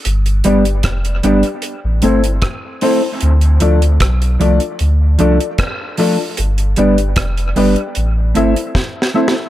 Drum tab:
HH |x--x--x--x--x--x--x--x--x-----x--x--x-----o-----|x--x--x--x--x--x--x--x--x-----x--x--x-----o-----|x--x--x--x--x--x--o--x--x-----x--x--------------|
SD |------------r-----------------------r-----------|------------r-----------------------r-----------|------------r-----------------------o---o---o---|
BD |------------o-----------------------o-----------|------------o-----------------------o-----------|------------o-----------------------o-----------|